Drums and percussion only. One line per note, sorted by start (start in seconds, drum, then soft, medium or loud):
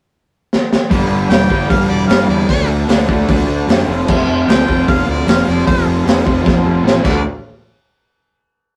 0.53 snare medium
0.73 snare medium
0.91 kick loud
0.91 open hi-hat medium
1.31 snare loud
1.31 open hi-hat medium
1.50 kick medium
1.70 kick loud
1.70 open hi-hat medium
2.10 snare loud
2.10 open hi-hat medium
2.49 kick loud
2.49 open hi-hat medium
2.89 snare loud
2.89 open hi-hat medium
3.09 kick medium
3.28 kick loud
3.28 open hi-hat medium
3.69 snare loud
3.69 open hi-hat medium
4.08 kick loud
4.08 crash medium
4.49 snare loud
4.49 open hi-hat medium
4.68 kick medium
4.88 kick loud
4.88 open hi-hat medium
5.28 snare loud
5.28 open hi-hat medium
5.68 kick loud
5.68 open hi-hat medium
6.07 snare loud
6.07 open hi-hat medium
6.27 kick medium
6.46 kick loud
6.46 snare medium
6.88 snare medium
7.05 kick loud
7.05 crash medium